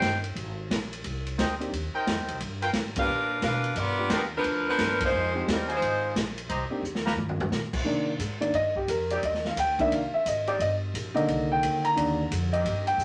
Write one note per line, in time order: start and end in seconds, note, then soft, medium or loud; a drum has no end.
0.00 0.34 G1 loud
0.00 0.19 D#4 medium
0.00 0.19 A#4 medium
0.00 0.19 C5 medium
0.00 0.19 G5 loud
0.00 kick soft
0.00 snare medium
0.00 hi-hat pedal medium
0.00 ride medium
0.24 ride soft
0.35 0.68 G#1 medium
0.35 kick soft
0.35 ride medium
0.70 1.03 A#1 medium
0.70 kick soft
0.70 snare medium
0.70 hi-hat pedal medium
0.70 ride medium
0.93 ride medium
1.04 1.37 C2 medium
1.04 kick soft
1.04 ride medium
1.26 ride soft
1.38 1.71 D2 medium
1.38 1.53 D#4 medium
1.38 1.53 A#4 medium
1.38 1.53 C5 medium
1.38 1.53 G5 medium
1.38 kick soft
1.38 snare medium
1.38 hi-hat pedal medium
1.38 ride medium
1.60 1.71 A#3 medium
1.60 1.71 C4 medium
1.60 1.71 D4 medium
1.60 1.71 D#4 medium
1.60 1.71 G4 medium
1.60 ride soft
1.73 1.93 D#2 medium
1.73 kick soft
1.73 ride medium
1.94 2.38 D#4 medium
1.94 2.38 A#4 medium
1.94 2.38 C5 medium
1.94 2.38 G5 loud
1.94 muted upright bass stroke soft
2.07 2.17 F2 medium
2.07 kick soft
2.07 snare medium
2.07 hi-hat pedal medium
2.07 ride medium
2.17 2.28 D#2 medium
2.28 2.39 C2 medium
2.28 ride soft
2.40 2.73 G2 medium
2.40 kick soft
2.40 ride medium
2.61 2.70 F4 medium
2.61 2.70 A#4 medium
2.61 2.70 B4 medium
2.61 2.70 G5 loud
2.61 ride medium
2.73 3.07 G#2 medium
2.73 kick soft
2.73 snare medium
2.73 hi-hat pedal medium
2.73 ride medium
2.96 3.08 A#3 medium
2.96 3.08 B3 medium
2.96 3.08 D4 medium
2.96 3.41 D4 medium
2.96 3.08 F4 medium
2.96 3.08 G4 medium
2.96 3.41 A#4 medium
2.96 3.41 B4 medium
2.96 3.41 F5 loud
2.96 kick medium
2.96 ride medium
3.07 3.41 A#2 medium
3.42 3.75 B2 medium
3.42 3.75 D4 medium
3.42 3.75 A#4 medium
3.42 3.75 B4 medium
3.42 3.75 F5 medium
3.42 kick soft
3.42 snare medium
3.42 hi-hat pedal medium
3.42 ride medium
3.64 ride soft
3.76 4.09 G2 medium
3.76 4.11 B3 medium
3.76 4.12 F4 medium
3.76 4.12 A#4 medium
3.76 4.11 D5 loud
3.76 kick soft
3.76 ride medium
3.98 4.09 A#3 medium
3.98 4.09 B3 soft
3.98 4.10 D4 soft
3.98 4.09 F4 medium
3.98 4.10 G4 medium
4.10 4.43 D#2 medium
4.10 4.25 F4 medium
4.10 4.25 A#4 medium
4.10 4.25 B4 medium
4.10 4.25 G5 medium
4.10 kick soft
4.10 snare medium
4.10 hi-hat pedal medium
4.10 ride medium
4.14 4.23 F3 medium
4.14 4.23 B3 medium
4.14 4.23 D4 medium
4.14 4.23 A#4 medium
4.37 4.67 F3 medium
4.37 4.67 D4 medium
4.37 4.67 A#4 medium
4.37 4.67 B4 medium
4.44 4.77 D2 medium
4.44 kick soft
4.44 ride medium
4.69 4.99 F3 medium
4.69 5.00 D4 medium
4.69 5.00 A#4 medium
4.69 5.00 B4 medium
4.78 5.11 G2 medium
4.78 5.13 A#3 medium
4.78 5.13 B3 medium
4.78 5.13 D4 medium
4.78 5.13 F4 soft
4.78 5.13 A#4 medium
4.78 kick soft
4.78 snare medium
4.78 hi-hat pedal medium
4.78 ride medium
5.00 kick medium
5.00 ride medium
5.05 5.46 G#3 medium
5.05 5.46 D#4 medium
5.05 5.46 F4 medium
5.05 5.46 C5 medium
5.12 5.45 F2 medium
5.35 5.46 G#3 medium
5.35 5.46 C4 medium
5.35 5.46 D#4 medium
5.35 5.46 F4 medium
5.35 5.46 G4 medium
5.47 5.80 D#2 medium
5.47 kick soft
5.47 snare medium
5.47 hi-hat pedal medium
5.47 ride medium
5.52 5.71 G3 medium
5.52 5.71 C4 medium
5.52 5.71 D#4 medium
5.52 5.71 A#4 medium
5.67 6.12 F4 medium
5.67 6.12 C5 medium
5.67 6.12 D#5 medium
5.67 6.12 G#5 medium
5.67 ride soft
5.75 6.15 G#3 medium
5.75 6.15 D#4 medium
5.75 6.15 F4 medium
5.75 6.15 C5 medium
5.81 6.14 G#1 medium
5.81 kick soft
5.81 ride medium
6.15 6.48 A#1 medium
6.15 kick soft
6.15 snare medium
6.15 hi-hat pedal medium
6.15 ride medium
6.38 ride medium
6.49 6.68 C2 medium
6.49 6.64 G4 medium
6.49 6.64 C5 medium
6.49 6.64 D#5 medium
6.49 6.64 A#5 medium
6.49 kick soft
6.49 ride medium
6.69 6.82 A#3 medium
6.69 6.81 C4 medium
6.69 6.81 D4 medium
6.69 6.82 D#4 medium
6.69 6.82 G4 medium
6.69 muted upright bass stroke soft
6.82 7.15 D#2 medium
6.82 hi-hat pedal soft
6.95 snare soft
7.04 7.13 G4 medium
7.04 7.13 B4 medium
7.04 7.13 F5 medium
7.04 7.13 A#5 medium
7.04 snare medium
7.16 7.50 G2 medium
7.16 mid tom medium
7.29 floor tom medium
7.40 floor tom medium
7.51 7.84 A#2 medium
7.51 snare medium
7.51 hi-hat pedal medium
7.73 kick medium
7.73 crash medium
7.84 8.18 C3 medium
7.84 8.10 D#3 medium
7.84 8.11 A#3 soft
7.84 8.11 D4 medium
7.84 kick soft
8.19 8.52 G#2 medium
8.19 kick soft
8.19 hi-hat pedal medium
8.19 ride medium
8.40 8.52 D#3 soft
8.40 8.52 A#3 soft
8.40 8.52 D4 soft
8.40 8.53 D5 medium
8.40 ride soft
8.53 8.86 G2 medium
8.53 8.76 D#5 medium
8.53 kick soft
8.53 ride medium
8.76 8.88 G4 medium
8.76 kick soft
8.88 9.21 F2 medium
8.88 9.10 A#4 medium
8.88 kick soft
8.88 hi-hat pedal medium
8.88 ride medium
9.10 9.19 D#3 loud
9.10 9.19 A#3 medium
9.10 9.20 C4 medium
9.10 9.20 G4 loud
9.10 9.22 D5 medium
9.10 ride medium
9.23 9.55 D#2 medium
9.23 9.45 D#5 medium
9.23 kick soft
9.23 ride medium
9.34 snare soft
9.45 9.57 F5 medium
9.45 snare soft
9.56 9.89 D2 loud
9.56 9.79 G5 medium
9.56 kick soft
9.56 hi-hat pedal medium
9.56 ride medium
9.79 9.99 D#3 medium
9.79 9.99 A#3 soft
9.79 9.99 D4 medium
9.79 9.91 E5 medium
9.79 kick medium
9.79 ride soft
9.91 10.11 C2 medium
9.91 10.13 F5 medium
9.91 ride medium
10.12 10.25 E5 medium
10.12 muted upright bass stroke soft
10.25 10.58 G#1 medium
10.25 10.48 D#5 medium
10.25 kick soft
10.25 hi-hat pedal medium
10.25 ride medium
10.46 10.55 D#3 loud
10.46 10.55 A#3 medium
10.46 10.55 C4 medium
10.46 10.55 G4 loud
10.46 10.59 D5 medium
10.46 ride soft
10.59 10.92 G1 medium
10.59 10.74 D#5 medium
10.59 kick soft
10.59 ride medium
10.94 11.27 A#1 medium
10.94 kick soft
10.94 hi-hat pedal medium
10.94 ride medium
11.14 12.48 D3 medium
11.14 11.94 D#3 soft
11.14 11.23 D#3 medium
11.14 11.23 A#3 medium
11.14 11.95 A#3 soft
11.14 11.23 C4 medium
11.14 11.23 G4 medium
11.14 11.47 D#5 medium
11.14 ride soft
11.28 11.61 C2 medium
11.28 kick soft
11.28 ride medium
11.52 11.82 G5 medium
11.62 11.82 D2 medium
11.62 kick soft
11.62 hi-hat pedal soft
11.62 ride medium
11.83 12.27 A#5 medium
11.83 muted upright bass stroke soft
11.83 ride soft
11.96 12.29 D#2 loud
11.96 12.21 D#3 soft
11.96 12.21 A#3 soft
11.96 12.22 D4 medium
11.96 kick soft
11.96 ride medium
12.31 12.64 F2 medium
12.31 kick soft
12.31 hi-hat pedal medium
12.31 ride medium
12.52 12.96 D#3 medium
12.52 12.96 A#3 medium
12.52 12.96 C4 medium
12.52 12.96 G4 medium
12.52 12.84 D#5 medium
12.52 ride soft
12.65 12.97 G2 medium
12.65 kick soft
12.65 ride medium
12.87 13.04 G5 medium
12.87 ride soft
12.97 13.04 A#2 medium
12.97 hi-hat pedal medium